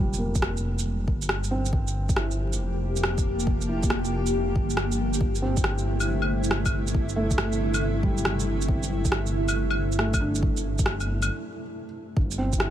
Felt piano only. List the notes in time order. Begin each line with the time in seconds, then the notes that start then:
Already playing: A#2 F3
0.00 G3
0.18 A#3
1.51 C4
2.16 E4
3.69 E4
5.42 C4
7.16 A3
8.03 G3
8.68 C4
9.99 A3
10.21 D4
12.38 C4
12.58 E4